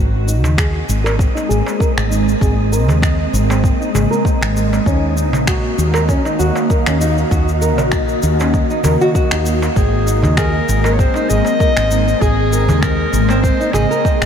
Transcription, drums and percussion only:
0.28 cabasa
0.44 darbuka ka, darbuka tek, darbuka dum, cabasa
0.58 finger snap, kick, cabasa
0.89 cabasa
1.06 darbuka tek, cabasa
1.19 kick, cabasa
1.37 darbuka ka, cabasa
1.50 darbuka ka, cabasa
1.66 darbuka tek, cabasa
1.80 kick, cabasa
1.98 finger snap, cabasa
2.12 cabasa
2.29 cabasa
2.41 kick, cabasa
2.73 cabasa
2.88 darbuka ka, darbuka tek, darbuka dum, cabasa
3.02 finger snap, kick, cabasa
3.33 darbuka ka, cabasa
3.50 darbuka ka, darbuka tek, cabasa
3.64 kick, cabasa
3.82 cabasa
3.95 darbuka tek, darbuka dum, cabasa
4.13 cabasa
4.25 kick, cabasa
4.41 finger snap, darbuka tek, cabasa
4.57 cabasa
4.73 darbuka tek, cabasa
4.86 kick, cabasa
5.17 cabasa
5.33 darbuka ka, darbuka tek, darbuka dum, cabasa
5.47 finger snap, kick, cabasa
5.79 cabasa
5.94 darbuka tek, cabasa
6.09 kick, cabasa
6.25 darbuka ka, cabasa
6.40 darbuka ka, cabasa
6.56 darbuka tek, cabasa
6.70 kick, cabasa
6.86 finger snap, cabasa
7.01 cabasa
7.18 cabasa
7.31 kick, cabasa
7.48 cabasa
7.62 cabasa
7.78 darbuka ka, darbuka tek, darbuka dum, cabasa
7.92 finger snap, kick, cabasa
8.09 cabasa
8.23 darbuka ka, cabasa
8.40 darbuka ka, darbuka tek, cabasa
8.54 kick, cabasa
8.70 cabasa
8.84 darbuka tek, darbuka dum, cabasa
9.01 cabasa
9.15 kick, cabasa
9.31 finger snap, darbuka tek, cabasa
9.46 cabasa
9.62 darbuka tek, cabasa
9.76 kick, cabasa
10.07 cabasa
10.22 darbuka ka, darbuka tek, darbuka dum, cabasa
10.37 finger snap, kick, cabasa
10.69 cabasa
10.84 darbuka tek, cabasa
10.99 kick, cabasa
11.14 darbuka ka, cabasa
11.28 darbuka ka, cabasa
11.45 darbuka tek, cabasa
11.60 kick, cabasa
11.77 finger snap, cabasa
11.91 cabasa
12.08 cabasa
12.21 kick, cabasa
12.53 cabasa
12.68 darbuka ka, darbuka tek, darbuka dum, cabasa
12.83 finger snap, kick, cabasa
13.12 darbuka ka, cabasa
13.29 darbuka ka, darbuka tek, cabasa
13.44 kick, cabasa
13.61 cabasa
13.73 darbuka tek, darbuka dum, cabasa
13.92 cabasa
14.05 kick, cabasa
14.20 finger snap, darbuka tek, cabasa

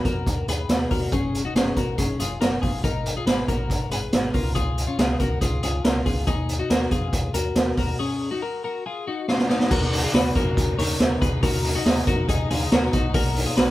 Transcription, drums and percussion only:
0.05 kick, closed hi-hat
0.27 kick, closed hi-hat
0.48 closed hi-hat
0.69 snare, closed hi-hat
0.90 kick, open hi-hat
1.12 kick, closed hi-hat
1.35 closed hi-hat
1.56 snare, closed hi-hat
1.76 kick, closed hi-hat
1.98 kick, closed hi-hat
2.20 closed hi-hat
2.41 snare, closed hi-hat
2.62 kick, open hi-hat
2.84 kick, closed hi-hat
3.06 closed hi-hat
3.27 snare, closed hi-hat
3.48 kick, closed hi-hat
3.70 kick, closed hi-hat
3.91 closed hi-hat
4.13 snare, closed hi-hat
4.34 kick, open hi-hat
4.55 kick, closed hi-hat
4.78 closed hi-hat
4.99 snare, closed hi-hat
5.20 kick, closed hi-hat
5.41 kick, closed hi-hat
5.63 closed hi-hat
5.84 snare, closed hi-hat
6.06 kick, open hi-hat
6.27 kick, closed hi-hat
6.49 closed hi-hat
6.70 snare, closed hi-hat
6.91 kick, closed hi-hat
7.13 kick, closed hi-hat
7.34 closed hi-hat
7.55 snare, closed hi-hat
7.77 kick, open hi-hat
9.28 snare
9.39 snare
9.49 snare
9.60 snare
9.71 kick, crash
9.93 hi-hat pedal, open hi-hat
10.14 snare, hi-hat pedal, open hi-hat
10.35 kick, hi-hat pedal, open hi-hat
10.57 kick, hi-hat pedal, open hi-hat
10.79 hi-hat pedal, open hi-hat
11.00 snare, hi-hat pedal, open hi-hat
11.22 kick, hi-hat pedal, open hi-hat
11.43 kick, hi-hat pedal, open hi-hat
11.64 hi-hat pedal, open hi-hat
11.86 snare, hi-hat pedal, open hi-hat
12.07 kick, hi-hat pedal, open hi-hat
12.29 kick, hi-hat pedal, open hi-hat
12.50 hi-hat pedal, open hi-hat
12.72 snare, hi-hat pedal, open hi-hat
12.93 kick, hi-hat pedal, open hi-hat
13.14 kick, hi-hat pedal, open hi-hat
13.36 hi-hat pedal, open hi-hat
13.57 snare, hi-hat pedal, open hi-hat

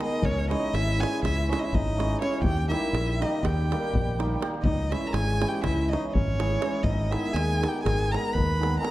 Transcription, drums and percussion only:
0.01 davul high
0.12 davul high
0.23 davul low
0.37 davul high
0.51 davul high
0.75 davul high
0.88 davul high
1.03 davul high
1.25 davul high, davul low
1.38 davul high
1.53 davul high
1.75 davul low
2.00 davul high
2.12 davul high
2.22 davul high
2.34 davul high
2.44 davul low
2.58 davul high
2.72 davul high
2.83 davul high
2.95 davul high
3.09 davul high
3.22 davul high
3.35 davul high
3.45 davul high, davul low
3.72 davul high
3.85 davul high
3.95 davul low
4.09 davul high
4.20 davul high
4.32 davul high
4.42 davul high
4.54 davul high
4.65 davul low
4.79 davul high
4.92 davul high
5.14 davul high
5.28 davul high
5.42 davul high
5.64 davul high, davul low
5.79 davul high
5.93 davul high
6.15 davul low
6.40 davul high
6.51 davul high
6.62 davul high
6.73 davul high
6.84 davul low
7.00 davul high
7.12 davul high
7.36 davul high
7.51 davul high
7.63 davul high
7.86 davul high, davul low
8.00 davul high
8.14 davul high
8.38 davul low
8.63 davul high
8.74 davul high
8.85 davul high

